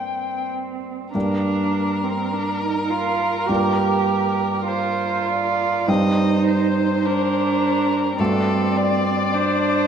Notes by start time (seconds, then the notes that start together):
Already playing: G2 A#3 C4 D4 G4 G5
1.14 G2 A#3 D4 G4 A#4
2.04 C4
2.33 D4
2.61 D#4
2.90 F4
3.48 G2 A#3 D4 F4 G4
4.68 F4 C5
5.29 D5
5.88 G2 G3 C4 D#4 G4 C5 D#5
6.48 C5
7.06 D4 A#4
8.19 G2 A3 C4 D4 F#4 A4 D5
8.77 D5
9.34 D4 C5